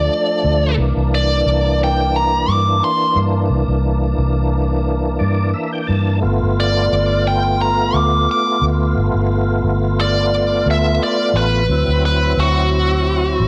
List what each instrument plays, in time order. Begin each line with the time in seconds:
Already playing: tonewheel organ F3 A3 D4, lead electric guitar D5
0.44 fingered electric bass D2
0.77 fingered electric bass C2, tonewheel organ E3 A#3 D4
0.96 fingered electric bass C2
1.15 lead electric guitar D5
1.46 fingered electric bass C2
1.84 lead electric guitar G5
2.16 lead electric guitar A#5
2.48 fingered electric bass G2, lead electric guitar D6
2.84 lead electric guitar C6
3.16 fingered electric bass G2
3.50 fingered electric bass C2
3.68 fingered electric bass C2
4.18 fingered electric bass C2
5.19 fingered electric bass G2, tonewheel organ D5
5.54 tonewheel organ E5
5.73 tonewheel organ G5
5.87 fingered electric bass G2, tonewheel organ A5
6.20 fingered electric bass G1, tonewheel organ A3 B3 F4
6.43 fingered electric bass G1
6.60 lead electric guitar D5
6.92 fingered electric bass G1
7.28 lead electric guitar G5
7.62 lead electric guitar A#5
7.94 fingered electric bass D2, lead electric guitar D6
8.31 lead electric guitar D6
8.62 fingered electric bass D2
8.97 fingered electric bass G1
9.14 fingered electric bass G1
9.64 fingered electric bass G1
10.01 lead electric guitar D5
10.66 fingered electric bass D2
10.71 lead electric guitar E5
11.03 lead electric guitar D5
11.34 fingered electric bass A1, lead electric guitar B4
11.68 fingered electric bass D2, tonewheel organ F#3 C4 E4
11.88 fingered electric bass D2
12.05 lead electric guitar B4
12.37 fingered electric bass D2, lead electric guitar F#4
13.40 fingered electric bass A1